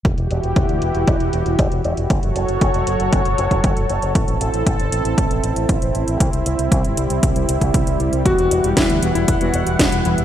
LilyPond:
<<
  \new Staff \with { instrumentName = "Analog synth pad" } { \time 4/4 \key e \minor \tempo 4 = 117 << { g'1 | cis''1 | a'1 | g1~ |
g1 | } \\ { <e e' fis'>1 | <fis fis' a'>1 | <c' e'>1~ | <c' e'>1 |
<e fis''>1 | } >> }
  \new Staff \with { instrumentName = "Electric grand piano" } { \time 4/4 \key e \minor r1 | r1 | r1 | r1 |
fis'8. r16 e'8 r16 e'2 r16 | }
  \new Staff \with { instrumentName = "Analog polysynth" } { \time 4/4 \key e \minor r1 | r1 | r1 | r1 |
<e g b fis'>8. <e g b g'>8. <e g b fis'>8 r16 <e g b fis'>8. <e g b fis'>8 <e g b e'>16 r16 | }
  \new Staff \with { instrumentName = "Fingered electric bass" } { \clef bass \time 4/4 \key e \minor e,,16 e,,16 e,,16 e,,16 e,,16 d,16 e,,16 e,,16 e,,16 e,,16 e,,16 e,,16 e,,16 e,,16 e,,16 e,,16 | fis,,16 fis,,16 fis,,16 fis,,16 fis,,16 e,,16 fis,,16 fis,,16 fis,,16 fis,,16 fis,,16 fis,,16 fis,,16 fis,,16 fis,,16 fis,,16 | a,,16 a,,16 a,,16 a,,16 a,,16 g,,16 a,,16 a,,16 a,,16 a,,16 a,,16 a,,16 a,,16 a,,16 a,,16 a,,16 | c,16 c,16 c,16 c,16 c,16 g,,16 c,16 c,16 c,16 c,16 c,16 c,16 c,16 c,16 c,16 c,16 |
e,,16 e,,16 e,,16 e,,16 e,,16 d,16 e,,16 e,,16 e,,16 e,,16 e,,16 e,,16 e,,16 e,,16 e,,16 e,,16 | }
  \new DrumStaff \with { instrumentName = "Drums" } \drummode { \time 4/4 <hh bd>16 hh16 hh16 hh16 <hh bd>16 hh16 hh16 hh16 <hh bd>16 hh16 hh16 hh16 <hh bd>16 hh16 hh16 hh16 | <hh bd>16 hh16 hh16 hh16 <hh bd>16 hh16 hh16 hh16 <hh bd>16 hh16 hh16 <hh bd>16 <hh bd>16 hh16 hh16 hh16 | <hh bd>16 hh16 hh16 hh16 <hh bd>16 hh16 hh16 hh16 <hh bd>16 hh16 hh16 hh16 <hh bd>16 hh16 hh16 hh16 | <hh bd>16 hh16 hh16 hh16 <hh bd>16 hh16 hh16 hh16 <hh bd>16 hh16 hh16 <hh bd>16 <hh bd>16 hh16 hh16 hh16 |
<hh bd>16 hh16 hh16 hh16 <hh bd sn>16 hh16 hh16 hh16 <hh bd>16 hh16 hh16 hh16 <hh bd sn>16 hh16 hh16 hh16 | }
>>